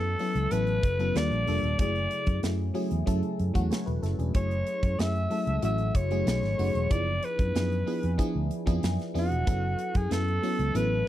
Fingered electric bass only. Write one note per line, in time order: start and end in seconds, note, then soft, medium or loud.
0.00 0.14 F#2 medium
0.35 0.49 C#2 medium
0.51 0.78 A1 medium
0.84 1.10 F#1 medium
1.15 1.29 D#2 medium
1.31 1.44 A#1 medium
1.47 1.61 F1 medium
1.63 1.76 D#1 medium
1.79 2.06 F#1 medium
2.27 2.40 F#2 loud
2.43 2.70 F#2 medium
2.92 3.05 E2 medium
3.07 3.20 F#2 medium
3.40 3.53 F#2 medium
3.55 3.69 E2 medium
3.87 4.01 E1 medium
4.03 4.16 F#1 medium
4.19 4.32 E1 medium
4.35 4.62 F#1 medium
4.83 4.96 F#2 medium
4.99 5.26 F#2 medium
5.47 5.60 C#2 medium
5.63 5.90 A1 medium
5.95 6.22 F#1 medium
6.26 6.40 B1 medium
6.43 6.56 G#1 medium
6.59 6.72 F#1 medium
6.75 6.88 E1 medium
6.91 7.18 F#1 loud
7.39 7.52 F#2 medium
7.55 7.82 F#2 medium
8.04 8.17 F2 medium
8.35 8.49 D2 medium
8.67 8.80 F2 medium
8.83 8.97 F#2 medium
9.15 9.28 F2 medium
9.31 9.45 E1 medium
9.47 9.74 F#1 loud
9.95 10.08 F#2 loud
10.11 10.38 F#2 medium
10.59 10.72 C#2 medium
10.75 11.02 A1 loud